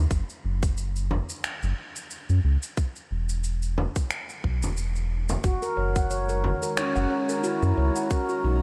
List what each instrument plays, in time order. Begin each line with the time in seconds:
0.11 analog synth bass F#1, kick, shaker
0.30 shaker
0.44 analog synth bass F#1
0.63 kick, shaker
0.77 shaker
0.96 shaker
1.11 frame drum
1.29 shaker
1.44 finger snap, shaker
1.63 analog synth bass F#1, shaker
1.96 shaker
2.11 shaker
2.29 analog synth bass F#2, shaker
2.44 analog synth bass C#2
2.63 shaker
2.77 kick, shaker
2.96 shaker
3.11 analog synth bass E1
3.29 shaker
3.44 shaker
3.62 shaker
3.78 frame drum
3.96 kick, shaker
4.11 finger snap, shaker
4.29 shaker
4.44 analog synth bass B1, kick
4.62 analog synth bass E1, frame drum, shaker
4.77 shaker
4.96 shaker
5.29 frame drum, shaker
5.44 analog synth bass F#1, analog synth pad D#3, handpan F#4, kick, shaker
5.62 handpan A#4, shaker
5.77 analog synth bass F#1, handpan C#5
5.96 handpan F#5, kick, shaker
6.05 analog synth pad G#3 A#5
6.10 handpan C#5, shaker
6.29 handpan A#4, shaker
6.44 handpan F#4, frame drum
6.62 analog synth pad C#4 F#4, handpan A#4, shaker
6.77 ney D#4, handpan C#5, finger snap, shaker
6.82 ney C#4
6.96 analog synth bass F#1, handpan F#5, shaker
7.10 handpan C#5
7.29 handpan A#4, shaker
7.44 ney E4, handpan F#4, shaker
7.62 analog synth bass F#2, handpan A#4, shaker
7.77 analog synth bass C#2, handpan C#5
7.96 handpan F#5, shaker
8.11 ney F#4, handpan A#4, kick, shaker
8.29 handpan F#4, shaker
8.44 analog synth bass B1, handpan D#4